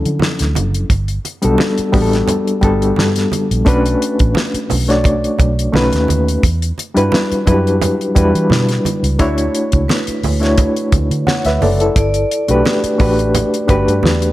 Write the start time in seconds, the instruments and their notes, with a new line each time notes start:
Already playing: reed electric piano F3 F#3 C#4 D4 E4 A4
0.05 fingered electric bass D3, closed hi-hat
0.19 snare, high conga
0.39 fingered electric bass D2, snare, closed hi-hat
0.55 fingered electric bass F#1, closed hi-hat, high conga
0.74 closed hi-hat
0.90 fingered electric bass G1, kick, closed hi-hat, muted conga
1.08 closed hi-hat
1.25 closed hi-hat, muted conga
1.42 fingered electric bass B1, reed electric piano G3 B3 D4 F#4 A4, closed hi-hat
1.58 snare, high conga
1.78 muted fingered electric bass stroke, closed hi-hat
1.92 fingered electric bass A1, reed electric piano G3 B3 D4 F#4 G4, kick, open hi-hat, low conga
2.02 reed electric piano A4
2.13 snare, closed hi-hat
2.28 closed hi-hat, muted conga, low conga
2.47 closed hi-hat
2.61 fingered electric bass G1, reed electric piano G3 B3 D4 F#4 A4, kick, closed hi-hat, low conga
2.82 closed hi-hat
2.96 fingered electric bass G2, snare, high conga
3.16 snare, closed hi-hat
3.32 closed hi-hat, high conga
3.51 fingered electric bass A#1, closed hi-hat
3.65 fingered electric bass B1, reed electric piano A3 C#4 D4 F#4 B4, kick, closed hi-hat, muted conga
3.86 closed hi-hat
4.02 closed hi-hat
4.19 fingered electric bass A1, kick, closed hi-hat
4.35 snare, high conga
4.54 muted fingered electric bass stroke, closed hi-hat
4.70 fingered electric bass B1, open hi-hat, low conga
4.88 reed electric piano A3 D4 F#4 C#5 D5, snare, closed hi-hat
5.04 kick, closed hi-hat, muted conga
5.24 closed hi-hat
5.38 fingered electric bass B1, kick, closed hi-hat, low conga
5.59 closed hi-hat
5.72 fingered electric bass B1, reed electric piano A3 C#4 D#4 F#4 B4, snare, high conga
5.93 fingered electric bass D#2, snare, closed hi-hat
6.08 fingered electric bass D#2, closed hi-hat, high conga
6.28 closed hi-hat
6.43 fingered electric bass E2, kick, closed hi-hat, muted conga
6.62 closed hi-hat
6.78 closed hi-hat, muted conga
6.94 fingered electric bass G2, reed electric piano G3 D4 E4 F#4 B4, closed hi-hat
7.12 snare, high conga
7.32 muted fingered electric bass stroke, closed hi-hat
7.45 fingered electric bass F#2, reed electric piano F#3 D4 E4 F#4 B4, kick, closed hi-hat, low conga
7.52 reed electric piano G4
7.67 closed hi-hat
7.81 closed hi-hat, muted conga, low conga
8.01 closed hi-hat
8.15 fingered electric bass E2, reed electric piano G3 D4 E4 F#4 B4, kick, closed hi-hat, low conga
8.35 fingered electric bass E3, closed hi-hat
8.50 fingered electric bass B2, snare, high conga
8.69 snare, closed hi-hat
8.85 closed hi-hat, high conga
9.03 fingered electric bass C#2, closed hi-hat
9.19 reed electric piano A3 D4 E4 F#4 C#5, vibraphone C#5, kick, closed hi-hat, muted conga
9.38 closed hi-hat
9.55 closed hi-hat
9.72 fingered electric bass C#2, kick, closed hi-hat
9.88 vibraphone B4, snare, high conga
10.07 muted fingered electric bass stroke, closed hi-hat
10.23 fingered electric bass D2, open hi-hat, low conga
10.40 reed electric piano A3 D4 E4 F#4 C#5, snare, closed hi-hat
10.58 kick, closed hi-hat, muted conga
10.77 closed hi-hat
10.92 fingered electric bass D2, kick, closed hi-hat, low conga
11.11 fingered electric bass D3, closed hi-hat
11.27 reed electric piano C#5 F#5, snare, high conga
11.45 fingered electric bass D2, reed electric piano B4 E5, snare, closed hi-hat
11.61 fingered electric bass F#1, reed electric piano A4 D5, open hi-hat, high conga
11.80 reed electric piano E4 A4, closed hi-hat
11.96 fingered electric bass G1, vibraphone D5, kick, closed hi-hat, muted conga
12.14 closed hi-hat
12.31 closed hi-hat
12.48 fingered electric bass B1, reed electric piano A3 D4 F#4 G4 B4, closed hi-hat
12.65 snare, high conga
12.84 muted fingered electric bass stroke, closed hi-hat
12.98 fingered electric bass A1, reed electric piano A3 D4 F#4 G4 B4, kick, open hi-hat, low conga
13.19 closed hi-hat
13.34 closed hi-hat, muted conga, low conga
13.54 closed hi-hat
13.67 fingered electric bass G1, reed electric piano A3 D4 F#4 G4 B4, kick, closed hi-hat, low conga
13.88 fingered electric bass G2, closed hi-hat
14.03 fingered electric bass E2, snare, high conga
14.22 closed hi-hat